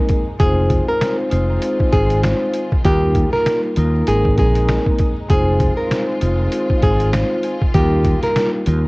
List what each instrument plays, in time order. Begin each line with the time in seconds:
Already playing: string section C3 G#3 A#3 D#4, vibraphone G#3 A#3 C4 D#4 A#4
0.09 kick, closed hi-hat
0.39 fretless electric bass F1, string section D#3 G#3 C4 F4, vibraphone G#3 C4 D#4 F4 C5, nylon-string guitar G#4, kick, closed hi-hat
0.70 kick, closed hi-hat
0.88 nylon-string guitar A#4
1.01 snare, closed hi-hat
1.30 fretless electric bass F1, vibraphone G#3 C4 D#4 F4 C5, closed hi-hat
1.62 closed hi-hat
1.80 kick
1.92 fretless electric bass G#1, vibraphone G#3 C4 D#4 F4 C5, nylon-string guitar G#4, kick, closed hi-hat
2.10 closed hi-hat
2.23 snare, closed hi-hat
2.54 closed hi-hat
2.72 kick
2.84 fretless electric bass D#2, vibraphone G3 A#3 D#4 F4 A#4, string section G3 A#3, nylon-string guitar G4, kick, closed hi-hat
3.15 kick, closed hi-hat
3.33 nylon-string guitar A#4, snare
3.46 snare, closed hi-hat
3.76 fretless electric bass D#2, vibraphone G3 A#3 D#4 F4 A#4, closed hi-hat
4.07 fretless electric bass G#1, string section C3 G#3 D#4, vibraphone G#3 A#3 C4 D#4 A#4, nylon-string guitar G#4, closed hi-hat
4.25 kick
4.36 fretless electric bass A#1, vibraphone G#3 A#3 C4 D#4 A#4, nylon-string guitar G#4, kick, closed hi-hat
4.55 closed hi-hat
4.68 snare, closed hi-hat
4.86 kick
4.98 kick, closed hi-hat
5.28 fretless electric bass F1, string section D#3 G#3 C4 F4, vibraphone G#3 C4 D#4 F4 C5, nylon-string guitar G#4, kick, closed hi-hat
5.60 kick, closed hi-hat
5.77 nylon-string guitar A#4
5.91 snare, closed hi-hat
6.20 fretless electric bass F1, vibraphone G#3 C4 D#4 F4 C5, closed hi-hat
6.52 closed hi-hat
6.70 kick
6.81 fretless electric bass G#1, vibraphone G#3 C4 D#4 F4 C5, nylon-string guitar G#4, kick, closed hi-hat
7.00 closed hi-hat
7.13 snare, closed hi-hat
7.43 closed hi-hat
7.62 kick
7.74 fretless electric bass D#2, vibraphone G3 A#3 D#4 F4 A#4, string section G3 A#3, nylon-string guitar G4, kick, closed hi-hat
8.05 kick, closed hi-hat
8.23 nylon-string guitar A#4, snare, closed hi-hat
8.36 snare, closed hi-hat
8.66 fretless electric bass D#2, vibraphone G3 A#3 D#4 F4 A#4, closed hi-hat